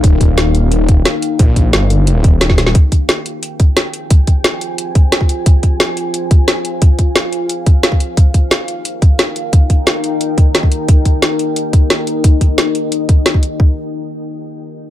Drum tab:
HH |x-x-x-x-x-x-x-x-|x-x-x-x-x-x-x-x-|x-x-x-x-x-x-x-x-|x-x-x-x-x-x-x-x-|
SD |----o-------o---|----o-------oooo|----o-------o---|----o-------o---|
BD |o-o-------o-----|o-o-------o--o--|o-o-------o-----|o-o-------o--o--|

HH |x-x-x-x-x-x-x-x-|x-x-x-x-x-x-x-x-|x-x-x-x-x-x-x-x-|x-x-x-x-x-x-x-x-|
SD |----o-------o---|----o-------o---|----o-------o---|----o-------o---|
BD |o-o-------o-----|o-o-------o--o--|o-o-------o-----|o-o-------o--o--|

HH |x-x-x-x-x-x-x-x-|x-x-x-x-x-x-x-x-|----------------|
SD |----o-------o---|----o-------o---|----------------|
BD |o-o-------o-----|o-o-------o--o--|o---------------|